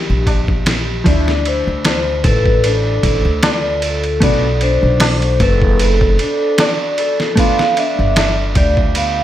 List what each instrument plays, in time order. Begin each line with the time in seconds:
Already playing: vibraphone G4
0.10 upright bass A#1
0.27 kick, ride, tabla na
0.48 kick
0.66 snare, ride
1.04 upright bass D2, clean electric guitar F3 A3 D4 E4, harp D4, kick, ride
1.09 vibraphone D5
1.28 snare
1.45 harp E4, vibraphone C5, ride
1.67 upright bass D2
1.85 harp F4, snare, ride, tabla na
2.24 upright bass A1, harp A4, vibraphone B4, kick, ride
2.46 kick
2.64 harp D4, vibraphone A4, ride
3.03 upright bass A1, harp E4, kick, ride
3.25 upright bass D2
3.43 harp F4, vibraphone D5, snare, ride, tabla na
3.82 harp A4, ride
4.04 ride
4.20 upright bass B1, clean electric guitar A3 B3 D4 F#4, harp B3, vibraphone D5, kick, ride
4.61 harp D4, vibraphone C5, ride
4.83 upright bass B1
5.00 harp F#4, snare, open hi-hat, tabla na
5.22 ride
5.40 upright bass F#1, harp A4, vibraphone B4, kick, ride
5.62 kick
5.79 harp B3, vibraphone A4, ride
6.01 kick
6.19 harp D4, ride
6.58 harp F#4, vibraphone D5, snare, ride, tabla na
6.98 harp A4, ride
7.20 snare
7.36 clean electric guitar A3 B3 D4, harp B3, vibraphone F5, kick, ride
7.40 clean electric guitar F4
7.59 snare
7.77 harp D4, vibraphone E5, ride
7.99 upright bass G1
8.16 harp F4, snare, ride, tabla na
8.55 upright bass D2, harp G4, vibraphone D5, kick, ride
8.77 kick
8.95 harp B3, vibraphone F5, ride